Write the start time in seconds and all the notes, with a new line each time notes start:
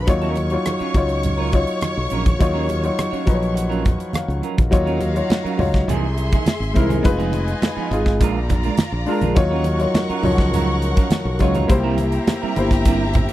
0.07 D#2 F#3 D#4 F4 C#5 C#6, muted clean electric guitar stroke, kick, closed hi-hat, muted conga
0.22 F#3 C#4 F4 A#4, closed hi-hat
0.35 muted clean electric guitar stroke, closed hi-hat, muted conga
0.50 F#3 D#4 F4 C#5, muted clean electric guitar stroke, closed hi-hat
0.66 muted clean electric guitar stroke, cross-stick, closed hi-hat, high conga
0.79 F#3 C#4 F4 C#5, muted fingered electric bass stroke, closed hi-hat
0.94 C#2 F#3 D#4 F4 C#5, muted clean electric guitar stroke, kick, closed hi-hat, muted conga
1.09 muted clean electric guitar stroke, closed hi-hat
1.23 muted clean electric guitar stroke, closed hi-hat, muted conga, low conga
1.37 F#3 C#4 F4 A#4
1.52 F#3 D#4 F4 C#5, muted clean electric guitar stroke, kick, closed hi-hat
1.67 muted clean electric guitar stroke, closed hi-hat
1.81 muted clean electric guitar stroke, cross-stick, closed hi-hat, high conga
1.97 B1
2.10 A#1 F#3 C#4 F4 A#4, closed hi-hat
2.25 muted clean electric guitar stroke, kick, closed hi-hat, high conga
2.39 D#2 F#3 D#4 F4 C#5, muted clean electric guitar stroke, kick, closed hi-hat, muted conga
2.54 F#3 C#4 F4 A#4
2.68 muted clean electric guitar stroke, closed hi-hat, muted conga
2.83 F#3 D#4 F4 C#5, muted clean electric guitar stroke, closed hi-hat
2.98 muted clean electric guitar stroke, cross-stick, closed hi-hat, high conga
3.11 F#3 C#4 F4 C#5, muted fingered electric bass stroke, closed hi-hat
3.26 A#1 F3 F#3 D#4 B4 A#5, muted clean electric guitar stroke, kick, closed hi-hat, muted conga
3.35 C#5
3.40 muted clean electric guitar stroke, closed hi-hat
3.55 F#5, muted clean electric guitar stroke, closed hi-hat, muted conga
3.70 F#3 C#4 F4 A#4, closed hi-hat
3.85 muted clean electric guitar stroke, kick, closed hi-hat, low conga
3.99 muted clean electric guitar stroke, closed hi-hat
4.13 F5, muted clean electric guitar stroke, muted fingered electric bass stroke, cross-stick, closed hi-hat, high conga
4.28 C#2, closed hi-hat
4.42 F#3 C#4 F4 A#4, closed hi-hat
4.57 A#1, muted clean electric guitar stroke, kick, closed hi-hat, high conga
4.71 D#2 F#3 D#4 F4 F#4 C#5 F5 A#5, muted clean electric guitar stroke, kick, closed hi-hat, muted conga
4.86 F#3 C#4 F4 A#4, closed hi-hat
5.01 muted clean electric guitar stroke, closed hi-hat, muted conga
5.14 F#3 D#4 F4 C#5, muted clean electric guitar stroke, closed hi-hat
5.30 muted clean electric guitar stroke, snare, closed hi-hat, high conga
5.44 F#3 C#4 F4 A#4, muted fingered electric bass stroke, closed hi-hat
5.58 C#2 F#3 D#4 F4 C#5, muted clean electric guitar stroke, open hi-hat, muted conga, low conga
5.74 muted clean electric guitar stroke, kick, snare, closed hi-hat
5.88 C2 E3 A#3 D#4 G#4 E5 C6, closed hi-hat, muted conga, low conga
6.17 muted clean electric guitar stroke, closed hi-hat
6.32 E3 A#3 D#4 G#4, kick, closed hi-hat
6.46 muted clean electric guitar stroke, snare, closed hi-hat, high conga
6.60 G#1, muted clean electric guitar stroke, closed hi-hat
6.74 C2 E3 G#3 A#3 C4 D#4 E4 A#4, kick, closed hi-hat
6.89 E3 A#3 D#4 G#4, closed hi-hat, high conga
7.03 F1 G#3 D#4 F4 B4 D#5 G#5, muted clean electric guitar stroke, kick, closed hi-hat, muted conga
7.19 F3 B3 D#4 G#4, closed hi-hat
7.33 muted clean electric guitar stroke, closed hi-hat, muted conga
7.47 muted clean electric guitar stroke, closed hi-hat
7.62 muted clean electric guitar stroke, snare, closed hi-hat, high conga
7.76 F3 B3 D#4 G#4, muted fingered electric bass stroke
7.91 G#1 G#3 D#4 F4 G#4, muted clean electric guitar stroke, closed hi-hat, muted conga
8.06 muted clean electric guitar stroke, kick, snare, closed hi-hat
8.20 A#1 G#3 D4 F4 A#4 D5 A#5, kick, closed hi-hat
8.49 muted clean electric guitar stroke, kick, closed hi-hat, low conga
8.63 G#3 D4 F4 A#4, closed hi-hat
8.77 muted fingered electric bass stroke, muted clean electric guitar stroke, snare, closed hi-hat, high conga
8.92 A#1, muted clean electric guitar stroke
9.06 G#3 D4 F4 A#4, open hi-hat
9.21 A#1 G#3 D4 F4 A#4, closed hi-hat, high conga
9.35 D#2 F#3 D#4 F4 A#4 C#5 F#5 C#6, muted clean electric guitar stroke, kick, closed hi-hat, muted conga
9.51 F#3 C#4 F4 A#4
9.64 muted clean electric guitar stroke, closed hi-hat, muted conga
9.78 F#3 D#4 F4 C#5, muted clean electric guitar stroke, closed hi-hat
9.94 muted clean electric guitar stroke, snare, closed hi-hat, high conga
10.09 F#3 C#4 F4 A#4, muted fingered electric bass stroke, closed hi-hat
10.22 C#2 F3 F#3 D#4 C#5, muted clean electric guitar stroke, open hi-hat, muted conga, low conga
10.38 muted clean electric guitar stroke, kick, snare, closed hi-hat
10.53 F#3 C#4 F4 A#4, closed hi-hat, low conga
10.82 muted clean electric guitar stroke, closed hi-hat
10.96 F#3 C#4 F4 A#4, kick, closed hi-hat
11.10 muted clean electric guitar stroke, snare, closed hi-hat, high conga
11.25 B1, muted clean electric guitar stroke
11.39 C#2 F#3 C#4 D#4 F4 C#5, kick, closed hi-hat
11.54 F#3 C#4 F4 A#4, closed hi-hat, high conga
11.68 C2 A#3 E4 G4 C5 E5 A#5, muted clean electric guitar stroke, kick, closed hi-hat, muted conga
11.83 G3 C4 E4 A#4
11.98 muted clean electric guitar stroke, closed hi-hat, muted conga
12.12 muted clean electric guitar stroke, closed hi-hat
12.27 muted clean electric guitar stroke, snare, closed hi-hat, high conga
12.42 G3 C4 E4 A#4, muted fingered electric bass stroke
12.56 G1 A#3 E4 G4 C5, muted clean electric guitar stroke, closed hi-hat, muted conga
12.71 muted clean electric guitar stroke, kick, snare, closed hi-hat
12.85 G3 C4 E4 A#4, kick, closed hi-hat, muted conga
13.14 muted clean electric guitar stroke, kick, closed hi-hat, low conga
13.29 A#4, closed hi-hat